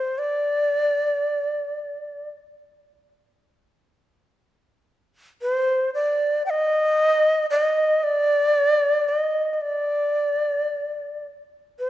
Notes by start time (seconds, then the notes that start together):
Already playing: C5
0.18 D5
5.42 C5
5.94 D5
6.46 G5
6.50 D#5
7.51 D#5
8.03 D5
9.08 D#5
9.53 D#5
9.61 D5
11.79 C5